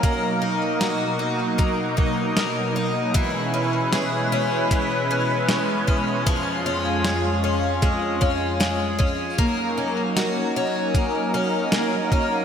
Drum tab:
HH |x-x-x-x-|x-x-x-x-|x-x-x-x-|x-x-x-x-|
SD |--o---o-|--o---o-|--o---o-|--o---o-|
BD |o---oo--|o---o--o|o---oo-o|o---o--o|